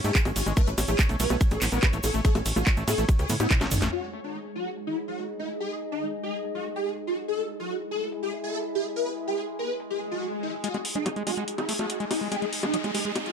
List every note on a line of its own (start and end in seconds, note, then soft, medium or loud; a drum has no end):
0.00 3.93 C#4 medium
0.00 3.93 C#5 medium
0.04 0.11 G#2 medium
0.04 0.11 A3 loud
0.04 0.18 G#4 loud
0.04 closed hi-hat medium
0.04 shaker soft
0.15 kick loud
0.15 clap loud
0.15 closed hi-hat medium
0.15 shaker soft
0.25 0.32 G#1 medium
0.25 0.30 G#3 loud
0.25 closed hi-hat medium
0.25 high bongo medium
0.25 shaker soft
0.36 0.43 G#1 loud
0.36 0.45 F#4 medium
0.36 open hi-hat medium
0.36 ride medium
0.36 shaker medium
0.46 0.53 G#1 medium
0.46 0.53 G#3 medium
0.46 closed hi-hat medium
0.46 high bongo soft
0.46 shaker soft
0.57 0.61 A3 loud
0.57 0.70 B4 loud
0.57 kick loud
0.57 closed hi-hat medium
0.57 shaker soft
0.67 0.74 A1 medium
0.67 0.70 A3 loud
0.67 closed hi-hat medium
0.67 shaker soft
0.78 0.85 A1 loud
0.78 open hi-hat loud
0.78 ride medium
0.78 high bongo medium
0.78 shaker medium
0.88 0.95 A1 loud
0.88 0.91 A3 loud
0.88 1.01 G#4 loud
0.88 closed hi-hat medium
0.88 shaker soft
0.99 1.02 G#3 medium
0.99 kick loud
0.99 clap loud
0.99 closed hi-hat medium
0.99 high bongo soft
0.99 shaker medium
1.09 1.16 B1 medium
1.09 1.16 A3 medium
1.09 closed hi-hat medium
1.09 shaker soft
1.20 1.27 B1 loud
1.20 1.24 A3 loud
1.20 1.33 B4 loud
1.20 open hi-hat medium
1.20 ride medium
1.20 shaker medium
1.30 1.37 B1 loud
1.30 1.37 A3 medium
1.30 high bongo medium
1.30 shaker soft
1.41 kick loud
1.41 closed hi-hat medium
1.41 shaker medium
1.51 1.58 A1 medium
1.51 1.60 A4 medium
1.51 closed hi-hat medium
1.51 high bongo soft
1.51 shaker soft
1.61 1.69 A1 loud
1.61 1.66 B3 medium
1.61 clap medium
1.61 open hi-hat loud
1.61 ride medium
1.61 shaker medium
1.72 1.79 A1 medium
1.72 1.79 B3 loud
1.72 1.85 B4 loud
1.72 shaker soft
1.82 kick loud
1.82 clap loud
1.82 closed hi-hat medium
1.82 high bongo medium
1.82 shaker soft
1.93 2.00 A1 medium
1.93 1.98 A3 loud
1.93 closed hi-hat medium
1.93 shaker soft
2.03 2.11 A1 loud
2.03 2.12 A4 medium
2.03 open hi-hat medium
2.03 ride medium
2.03 high bongo soft
2.03 shaker medium
2.14 2.21 A1 medium
2.14 2.21 A3 medium
2.14 closed hi-hat medium
2.14 shaker soft
2.25 2.29 A3 loud
2.25 2.38 A4 loud
2.25 kick loud
2.25 closed hi-hat medium
2.25 shaker soft
2.35 2.42 A1 medium
2.35 2.38 A3 loud
2.35 closed hi-hat medium
2.35 high bongo medium
2.35 shaker soft
2.46 2.53 A1 loud
2.46 open hi-hat loud
2.46 ride medium
2.46 shaker medium
2.56 2.63 A1 loud
2.56 2.59 A3 loud
2.56 2.69 F#4 loud
2.56 closed hi-hat medium
2.56 high bongo soft
2.56 shaker soft
2.67 2.69 G#3 medium
2.67 kick loud
2.67 clap loud
2.67 closed hi-hat medium
2.67 shaker medium
2.77 2.84 A1 medium
2.77 2.84 A3 medium
2.77 closed hi-hat medium
2.77 shaker soft
2.88 2.95 A2 loud
2.88 2.92 A3 loud
2.88 3.01 A4 loud
2.88 open hi-hat medium
2.88 ride medium
2.88 high bongo medium
2.88 shaker loud
2.98 3.05 A1 medium
2.98 3.05 A3 medium
2.98 closed hi-hat medium
2.98 shaker soft
3.09 kick loud
3.09 closed hi-hat medium
3.09 high bongo soft
3.09 shaker soft
3.19 3.26 C#2 medium
3.19 3.28 G#4 medium
3.19 closed hi-hat medium
3.19 shaker soft
3.29 3.36 A2 loud
3.29 3.34 B3 medium
3.29 open hi-hat loud
3.29 high tom medium
3.29 ride medium
3.29 shaker medium
3.40 3.47 A2 medium
3.40 3.47 B3 loud
3.40 3.53 E4 loud
3.40 closed hi-hat medium
3.40 high bongo medium
3.40 shaker soft
3.51 kick loud
3.51 clap loud
3.51 closed hi-hat medium
3.51 mid tom medium
3.51 shaker medium
3.61 3.68 A1 medium
3.61 3.66 A3 loud
3.61 snare medium
3.61 closed hi-hat medium
3.61 high bongo soft
3.61 shaker soft
3.71 3.78 A1 loud
3.71 3.80 D#4 medium
3.71 mid tom loud
3.71 open hi-hat medium
3.71 ride medium
3.71 shaker loud
3.82 3.89 A1 medium
3.82 3.89 A3 medium
3.82 snare medium
3.82 closed hi-hat medium
3.82 shaker soft
3.92 10.63 G#3 medium
3.92 7.28 D#4 medium
3.92 4.06 F#4 loud
3.92 10.63 G#4 medium
3.92 closed hi-hat medium
4.01 7.28 G#4 medium
4.13 closed hi-hat medium
4.24 4.37 D#4 medium
4.24 closed hi-hat soft
4.34 closed hi-hat medium
4.45 closed hi-hat soft
4.55 4.69 F#4 loud
4.55 7.28 D#5 medium
4.55 closed hi-hat medium
4.66 closed hi-hat soft
4.76 closed hi-hat medium
4.87 4.96 E4 medium
4.87 closed hi-hat soft
4.97 closed hi-hat medium
5.08 5.21 F#4 medium
5.08 closed hi-hat soft
5.18 closed hi-hat medium
5.29 closed hi-hat soft
5.39 5.48 E4 medium
5.39 closed hi-hat soft
5.60 5.74 G#4 loud
5.60 closed hi-hat medium
5.71 closed hi-hat soft
5.81 closed hi-hat medium
5.92 6.05 D#4 medium
6.02 closed hi-hat medium
6.23 6.36 G#4 loud
6.23 closed hi-hat medium
6.44 closed hi-hat medium
6.55 6.64 F#4 medium
6.55 closed hi-hat soft
6.65 closed hi-hat medium
6.76 6.89 G#4 loud
6.86 closed hi-hat medium
6.97 closed hi-hat soft
7.07 7.16 F#4 medium
7.07 closed hi-hat soft
7.28 10.64 E4 medium
7.28 7.41 A4 loud
7.28 closed hi-hat medium
7.39 closed hi-hat soft
7.49 closed hi-hat medium
7.60 7.73 F#4 medium
7.60 closed hi-hat soft
7.70 closed hi-hat medium
7.80 10.64 E5 medium
7.80 closed hi-hat soft
7.91 8.04 A4 loud
7.91 closed hi-hat medium
8.02 closed hi-hat soft
8.12 closed hi-hat medium
8.23 8.31 G#4 medium
8.23 closed hi-hat soft
8.33 closed hi-hat medium
8.44 8.57 A4 loud
8.44 closed hi-hat soft
8.54 closed hi-hat medium
8.65 closed hi-hat soft
8.75 8.84 G#4 medium
8.75 closed hi-hat soft
8.96 9.09 B4 loud
8.96 closed hi-hat medium
9.07 closed hi-hat soft
9.17 closed hi-hat medium
9.28 9.41 G#4 medium
9.28 closed hi-hat soft
9.38 closed hi-hat medium
9.48 closed hi-hat soft
9.59 9.72 B4 loud
9.59 closed hi-hat medium
9.69 closed hi-hat soft
9.80 closed hi-hat medium
9.80 swell medium
9.90 9.99 G#4 medium
9.90 closed hi-hat soft
10.01 closed hi-hat medium
10.11 10.25 F#4 loud
10.11 closed hi-hat soft
10.22 closed hi-hat medium
10.32 closed hi-hat soft
10.43 10.52 E4 medium
10.43 closed hi-hat soft
10.64 13.32 G#3 medium
10.64 10.68 G#3 loud
10.64 13.32 D#4 medium
10.64 10.77 F#4 loud
10.64 13.32 G#4 medium
10.64 closed hi-hat loud
10.64 riser medium
10.74 10.77 G#3 loud
10.74 closed hi-hat soft
10.74 high bongo soft
10.83 13.32 G#4 medium
10.83 open hi-hat loud
10.95 10.98 G#3 loud
10.95 11.08 D#4 medium
10.95 closed hi-hat soft
11.06 11.09 F#3 medium
11.06 closed hi-hat loud
11.06 high bongo medium
11.16 11.23 G#3 medium
11.16 closed hi-hat soft
11.27 11.31 G#3 loud
11.27 11.40 F#4 loud
11.27 13.32 D#5 medium
11.27 open hi-hat loud
11.27 high bongo soft
11.37 11.44 G#3 medium
11.37 closed hi-hat soft
11.48 closed hi-hat medium
11.58 11.67 E4 medium
11.58 closed hi-hat soft
11.58 high bongo medium
11.69 11.73 A3 medium
11.69 open hi-hat loud
11.79 11.86 A3 loud
11.79 11.92 F#4 loud
11.79 closed hi-hat soft
11.79 high bongo soft
11.90 closed hi-hat medium
12.00 12.05 G#3 loud
12.00 closed hi-hat soft
12.11 12.19 E4 medium
12.11 open hi-hat medium
12.11 high bongo medium
12.21 12.28 G#3 medium
12.32 12.36 G#3 loud
12.32 12.45 G#4 loud
12.32 closed hi-hat medium
12.32 high bongo soft
12.42 12.45 G#3 loud
12.42 closed hi-hat soft
12.53 open hi-hat loud
12.63 12.66 G#3 loud
12.63 12.76 D#4 medium
12.63 closed hi-hat soft
12.63 high bongo medium
12.74 12.76 F#3 medium
12.74 closed hi-hat medium
12.84 12.91 G#3 medium
12.84 closed hi-hat soft
12.84 high bongo soft
12.95 12.99 G#3 loud
12.95 13.08 G#4 medium
12.95 open hi-hat loud
13.05 13.12 G#3 medium
13.05 closed hi-hat soft
13.16 closed hi-hat medium
13.16 high bongo medium
13.26 13.32 F#4 medium
13.26 closed hi-hat soft